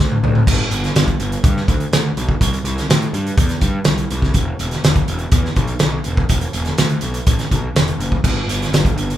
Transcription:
0.00 D2
0.12 mid tom
0.23 D2, floor tom, mid tom
0.35 mid tom
0.47 G1, kick, crash
0.71 G1, closed hi-hat
0.84 snare, closed hi-hat
0.95 G1, snare, closed hi-hat
1.08 kick, closed hi-hat
1.20 G1, closed hi-hat
1.32 closed hi-hat
1.44 G2, kick, closed hi-hat
1.57 snare
1.68 D2, kick, closed hi-hat
1.80 closed hi-hat
1.93 D2, snare, closed hi-hat
2.17 B1, closed hi-hat
2.29 kick
2.41 C2, kick, closed hi-hat
2.53 closed hi-hat
2.64 C2, closed hi-hat
2.78 snare, closed hi-hat
2.89 A2, snare, closed hi-hat
3.02 closed hi-hat
3.13 G2, closed hi-hat
3.27 closed hi-hat
3.37 E2, kick, closed hi-hat
3.49 snare, closed hi-hat
3.61 G2, kick, closed hi-hat
3.84 C2, snare, closed hi-hat
3.98 closed hi-hat
4.11 C2, closed hi-hat
4.22 kick, snare
4.34 E1, kick, closed hi-hat
4.59 E1, closed hi-hat
4.71 snare, closed hi-hat
4.84 E1, snare, closed hi-hat
4.96 kick, closed hi-hat
5.08 E1, closed hi-hat
5.19 closed hi-hat
5.32 E2, kick, closed hi-hat
5.45 snare
5.56 B1, kick, closed hi-hat
5.67 closed hi-hat
5.79 B1, snare, closed hi-hat
6.04 E1, closed hi-hat
6.17 kick
6.29 E1, kick, closed hi-hat
6.41 closed hi-hat
6.53 E1, closed hi-hat
6.65 snare, closed hi-hat
6.78 D2, snare, closed hi-hat
6.89 closed hi-hat
7.01 B1, closed hi-hat
7.14 closed hi-hat
7.27 A1, kick, closed hi-hat
7.39 snare, closed hi-hat
7.51 B1, kick, closed hi-hat
7.75 E1, snare, closed hi-hat
7.88 closed hi-hat
7.98 F#1, closed hi-hat
8.12 kick
8.24 G1, kick, crash
8.47 G1, closed hi-hat
8.62 snare, closed hi-hat
8.72 G1, snare, closed hi-hat
8.85 kick, closed hi-hat
8.96 G1, closed hi-hat
9.10 closed hi-hat

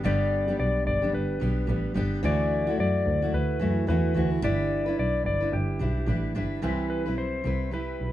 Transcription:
0.04 G1 G2 D3 G3 B3 D4 G4 D5
0.48 G3 B3 D4 G4
0.59 B1 D5
0.86 G1 D5
1.02 G3 B3 D4 G4
1.14 G1 B4
1.40 B1 G3 B3 D4 G4
1.67 A1 G3 B3 D4 G4
1.94 G1 G3 B3 D4 G4
2.23 D2 D3 E3 A3 E4 F#4 D5
2.67 A3 E4 F#4
2.78 F#2 D5
3.05 D2
3.22 A3 E4 F#4
3.33 D2 B4
3.60 F#2 E3 A3 E4 F#4
3.87 E2 E3 A3 E4 F#4 B4
4.14 D2 E3 A3 E4 F#4
4.42 G1 G3 D4 E4 B4 D5
4.86 D4 E4 B4
4.98 B1 D5
5.25 G1 D5
5.40 D4 E4 B4
5.52 G1 G4
5.79 B1 G3 D4 E4 B4
6.06 A1 G3 D4 E4 B4
6.35 G1 G3 D4 E4 B4
6.62 C2 C3 E3 G3 C4 E4 B4
6.90 B4
7.06 B1 G3 C4 E4 B4
7.18 C5
7.44 C2 G3 C4 E4 B4
7.71 G3 C4 E4 B4
8.00 B1

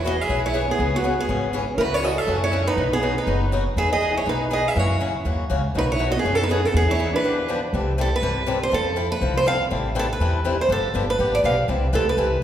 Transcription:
Already playing: E2
0.05 E3 F#3 B3 E4 F#4 G#4 D#5
0.19 G#4 E5
0.29 B1 E3 F#3 B3 E4 G#4
0.45 E4 C#5
0.54 E3 F#3 B3 E4 G#4
0.69 B3 G#4
0.78 C#2 C#3 E3 B3 C#4 G#4
0.94 B3 F#4
1.04 C#3 E3 B3 C#4 G#4
1.19 B3 G#4
1.28 G#1 C#3 E3 B3 C#4 G#4
1.53 C#3 E3 B3 C#4 G#4
1.74 C#2 C#4 E4 A#4
1.79 C#3 E3 A3 C#4 F#4 B4
1.92 E4 C#5
2.02 C#3 E3 A3 C#4 F#4 D#5
2.16 A4 E5
2.27 F#2 C#3 E3 A3 C#4 F#4
2.42 E4 C#5
2.52 C#3 E3 A3 C#4 F#4
2.67 D#4 B4
2.76 B1 B2 F#3 B3 D#4 F#4
2.93 B3 G#4
3.02 B2 F#3 B3 D#4 F#4
3.18 D#4 B4
3.26 F#1 B2 F#3 B3 D#4 F#4
3.52 B2 F#3 B3 D#4 F#4
3.76 E2 E3 B3 D#4 G#4 E5
3.92 G#4 D#5
4.01 E3 B3 D#4 G#4
4.16 E4 C#5
4.25 B1 E3 B3 D#4 G#4 B4
4.50 E3 B3 D#4 G#4 D#5
4.67 G#4 E5
4.75 F#2 C#3 E3 A#3 C#4 E4 F#4
4.79 C#5
5.00 C#3 E3 A#3 C#4 F#4
5.25 D#2 C#3 E3 A#3 C#4 F#4
5.50 C#2 C#3 E3 A#3 C#4 F#4
5.75 B1 B2 F#3 A3 D#4 F#4 B4
5.92 E4 C#5
5.99 B2 F#3 A3 D#4 F#4
6.10 F#4 D#5
6.17 B3 G#4
6.24 F#2 B2 F#3 A3 D#4 F#4
6.33 C#4 A4
6.41 D#4 B4
6.49 B2 F#3 A3 B3 D#4 F#4 G#4
6.64 C#4 A4
6.74 E2 E3 B3 D#4 G#4
6.88 E4 C#5
6.99 E3 B3 D#4 G#4
7.13 D4 B4
7.24 D3 F3 B3 D4 G4
7.48 D3 F3 B3 D4 G4
7.73 C2 C3 E3 G3 C4 E4 A4
7.98 C3 E3 G3 C4 E4 A4
8.16 B4
8.22 G1 C3 E3 G3 C4 E4 A4
8.46 C3 E3 G3 C4 E4 A4
8.63 C5
8.72 F2 F3 C4 E4 A4
8.96 F3 C4 E4 A4
9.12 B4
9.21 C2 F3 C4 E4 A4
9.37 C5
9.46 F3 C4 E4 A4 F5
9.70 A1 E3 G3 C4 E4 A4
9.95 E3 G3 C4 E4 A4
9.99 A4
10.13 B4
10.19 E2 E3 G3 C4 E4 A4
10.45 E3 G3 C4 E4 A4
10.61 C5
10.69 G1 D3 F3 B3 D4 G4 A4
10.94 G1 D3 F3 B3 D4 G4
11.10 B4
11.19 A1 D3 F3 B3 D4 G4
11.35 D5
11.43 B1 D3 F3 B3 D4 G4 F5
11.68 C2 C3 E3 G3 C4 E4 A4
11.92 D2 C3 E3 G3 C4 E4 A4
12.09 B4
12.17 C2 C3 E3 G3 C4 E4 A4

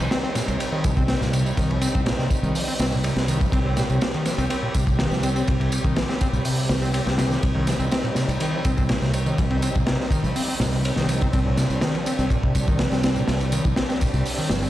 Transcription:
Already playing: G3 C4 D#4
0.11 C4, snare, ride, tambourine
0.24 C4, ride
0.35 A#2, snare, ride, tambourine
0.48 C2 C3, ride, tambourine
0.60 ride, tambourine
0.72 D#3
0.84 C2 F3, kick, ride, tambourine
0.97 C4, kick, tambourine
1.08 C4, snare, ride, tambourine
1.21 C2 A#2, snare, tambourine
1.33 C3, ride, tambourine
1.46 tambourine
1.57 C2 D#3, kick, ride, tambourine
1.70 F3, ride
1.81 C4, ride, tambourine
1.94 C2 C4, kick
2.06 A#2, snare, ride, tambourine
2.18 C3, snare
2.31 kick, ride, tambourine
2.43 C2 D#3, tambourine
2.55 F3, open hi-hat, tambourine
2.68 C4
2.79 C2 C4, snare, ride, tambourine
2.92 A#2, tambourine
3.04 C3, ride, tambourine
3.16 C2, snare, tambourine
3.28 D#3, ride, tambourine
3.41 F3, kick, tambourine
3.52 C2 C4 G4, kick, ride, tambourine
3.66 C4
3.77 A#2, snare, ride, tambourine
3.89 C2 C3, tambourine
4.01 snare, ride, tambourine
4.14 D#3, ride
4.25 F3, snare, ride, tambourine
4.38 C2 C4, ride, tambourine
4.50 C4, ride, tambourine
4.63 A#2
4.74 C2 C3, kick, ride, tambourine
4.87 kick, tambourine
4.99 D#3, snare, ride, tambourine
5.11 C2 F3, snare, tambourine
5.23 C4, ride, tambourine
5.36 C4, tambourine
5.48 C2 A#2, kick, ride, tambourine
5.60 C3, ride
5.72 ride, tambourine
5.84 C2 D#3, kick
5.96 F3, snare, ride, tambourine
6.09 C4, snare
6.21 C4, kick, ride, tambourine
6.33 C2 A#2, tambourine
6.45 C3, open hi-hat, tambourine
6.69 C2 D#3, snare, ride, tambourine
6.82 C4, tambourine
6.94 C4, ride, tambourine
7.06 C2 C3, snare, tambourine
7.18 C3, snare, ride, tambourine
7.31 D#3, snare, tambourine
7.43 C2 D#4, kick, ride, tambourine
7.55 D#3
7.67 F3, snare, ride, tambourine
7.79 C2 C4, tambourine
7.91 C4, snare, ride, tambourine
8.04 A#2, ride
8.15 C3, snare, ride, tambourine
8.28 C2, ride, tambourine
8.40 D#3, ride, tambourine
8.53 F3
8.65 C2 C4, kick, ride, tambourine
8.77 C4, kick, tambourine
8.89 A#2, snare, ride, tambourine
9.02 C2 C3, snare, tambourine
9.14 ride, tambourine
9.26 D#3, tambourine
9.38 C2 F3, kick, ride, tambourine
9.50 C4, ride
9.62 C4, ride, tambourine
9.75 C2 A#2, kick, tambourine
9.87 C3, snare, ride, tambourine
10.00 snare
10.11 D#3, kick, ride, tambourine
10.24 C2 F3, tambourine
10.36 C4, open hi-hat, tambourine
10.48 C4
10.60 C2 A#2, snare, ride, tambourine
10.73 C3, tambourine
10.85 ride, tambourine
10.96 C2 D#3, snare, tambourine
11.09 F3, ride, tambourine
11.21 C4, kick, tambourine
11.33 C2 C4 D4, kick, ride, tambourine
11.46 A#2
11.57 C3, snare, ride, tambourine
11.70 C2, tambourine
11.81 D#3, snare, ride, tambourine
11.95 F3, ride
12.06 C4, ride, tambourine
12.19 C2 C4, tambourine
12.30 A#2, kick, ride, tambourine
12.43 C3, kick
12.55 C2, kick, ride, tambourine
12.68 D#3, kick, tambourine
12.79 F3, snare, ride, tambourine
12.92 C2 C4, snare, tambourine
13.03 C4, snare, ride, tambourine
13.16 A#2, tambourine
13.28 C2 C3, snare, ride, tambourine
13.40 ride, tambourine
13.52 D#3, ride, tambourine
13.65 C2 F3, kick, tambourine
13.76 C4, snare, ride, tambourine
13.89 C4, snare, tambourine
14.01 A#2, kick, ride, tambourine
14.14 C2 C3, tambourine
14.26 open hi-hat, tambourine
14.38 D#3, tambourine
14.50 G1 F3, snare, ride, tambourine
14.62 C4, tambourine

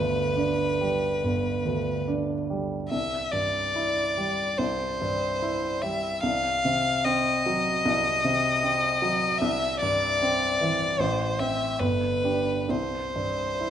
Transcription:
Already playing: G1 D2 B4
0.36 D4
0.81 G3
1.24 G1
1.65 D2
2.08 D4
2.50 G3
2.90 C2 E5
3.31 G2 D5
3.76 E4
4.17 G3
4.57 C2 C5
5.01 G2
5.42 E4
5.82 G3 E5
6.23 C2 F5
6.65 C3
7.05 C4 D#5
7.46 F#3
7.86 C2
8.24 C3
8.63 C4
9.02 F#3
9.38 C2 E5
9.81 G2 D5
10.22 C4
10.61 E3
11.00 A1 C5
11.39 C4 C5 E5
11.79 G1 B4
12.23 D4 G4
12.69 C2 C5
13.16 G2
13.61 E4

